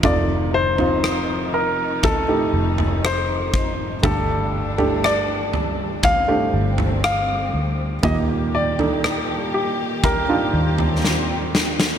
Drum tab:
SD |----r-------r---|----r-------r---|----r-------o-oo|
FT |o--o----o--o----|o--o--o-o--o----|o--o----o--o----|
BD |o-------o-----o-|o-------o-------|o-------o-------|